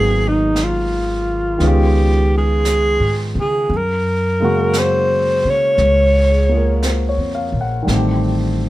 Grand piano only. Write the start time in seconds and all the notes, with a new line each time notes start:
Already playing: D#3 F#3 G#3 A#3 B3
1.58 D#3 G#3 B3
1.63 C#4 F4
4.40 C#3 G#3 A#3
4.44 C#4 F#4
6.32 G#4
6.49 A#3 F4 G#4
6.57 A#4
6.84 C5
7.09 C#5
7.35 F5
7.61 F#5
7.83 D#3 G3
7.87 A3 C4
7.93 G4